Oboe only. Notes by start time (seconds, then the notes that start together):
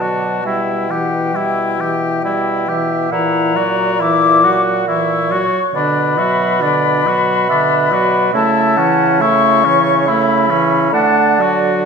0.01 F#4
0.46 E4
0.91 G4
1.36 E4
1.81 G4
2.25 E4
2.69 G4
3.12 E4
3.56 F#4
4.00 E4
4.44 F#4
4.88 E4
5.32 F#4
5.75 D4
6.18 F#4
6.62 D4
7.07 F#4
7.50 D4
7.93 F#4
8.34 E4
8.78 C#4
9.22 E4
9.65 C#4
10.07 E4
10.50 C#4
10.94 D4
11.41 F#4